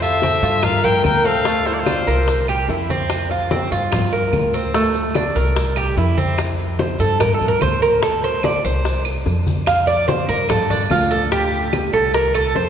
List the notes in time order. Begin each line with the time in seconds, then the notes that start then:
Already playing: F2
0.01 F4 A4 E5, high bongo, high conga, maracas
0.22 C4, high bongo, high conga, maracas
0.42 G2 F4, high bongo, high conga, maracas
0.63 A#4 F5, high bongo, high conga, low conga, claves, maracas
0.84 A#4 G5, high conga, low conga, maracas
1.04 D2 A#4 G5, high bongo, low bongo, high conga, claves, maracas
1.25 C4 A4 F5, high bongo, high conga, maracas
1.45 A3, high bongo, high conga, maracas
1.66 E4 C5, high bongo, high conga, maracas
1.73 F4 D5
1.80 F4 C5
1.86 D4, high bongo, high conga, claves, maracas
2.07 C2 A#4, high bongo, high conga, maracas
2.28 high bongo, high conga, maracas
2.48 G4, high conga, claves, maracas
2.69 F2 E4, high bongo, low bongo, maracas
2.89 C4, high bongo, high conga, maracas
3.10 high bongo, high conga, claves, maracas
3.30 F4, high bongo, high conga, maracas
3.51 C4, high bongo, high conga, maracas
3.71 G2 F4, high bongo, high conga, maracas
3.92 high bongo, high conga, low conga, claves, maracas
4.13 A#4, high conga, maracas
4.33 D2, high bongo, low bongo, high conga, claves, maracas
4.54 C4, high bongo, high conga, maracas
4.74 A3, high bongo, maracas
4.95 high bongo, high conga, maracas
5.15 D4, high bongo, high conga, claves, maracas
5.35 C2 A#4, high bongo, high conga, maracas
5.56 high bongo, high conga, maracas
5.76 G4, high conga, claves, maracas
5.97 F2 E4, high bongo, low bongo, high conga, maracas
6.18 C4, high bongo, high conga, maracas
6.38 high bongo, high conga, claves, maracas
6.59 high bongo, maracas
6.79 C5, high bongo, high conga, maracas
6.99 G2 A4, high bongo, high conga, maracas
7.20 A#4, high bongo, high conga, low conga, claves, maracas
7.34 A4
7.41 high conga, low conga, maracas
7.48 A#4
7.61 D2 C5, high bongo, low bongo, high conga, claves, maracas
7.82 A#4, high bongo, high conga, maracas
8.02 A4, high bongo, high conga, maracas
8.23 C5, high bongo, high conga, maracas
8.43 D5, high bongo, high conga, claves, maracas
8.64 C2 C5, high bongo, high conga, maracas
8.85 high bongo, high conga, maracas
9.05 high conga, claves, maracas
9.26 F2, high bongo, low bongo, high conga, maracas
9.47 high bongo, high conga, maracas
9.66 F5, high bongo, high conga, claves, maracas
9.87 D5, high bongo, high conga, maracas
10.08 C5, high bongo, high conga, maracas
10.28 G2 A#4, high bongo, high conga, maracas
10.49 A4, high bongo, high conga, low conga, claves, maracas
10.70 D4, high conga, low conga, maracas
10.90 D2 F4, high bongo, low bongo, high conga, claves, maracas
11.11 A4, high bongo, high conga, maracas
11.32 G4, high bongo, high conga, maracas
11.53 high bongo, high conga, maracas
11.73 high bongo, high conga, claves, maracas
11.93 C2 A4, high bongo, high conga, maracas
12.14 A#4, high bongo, high conga, maracas
12.34 A4, high conga, claves, maracas
12.55 F2 C5, high bongo, low bongo, high conga, maracas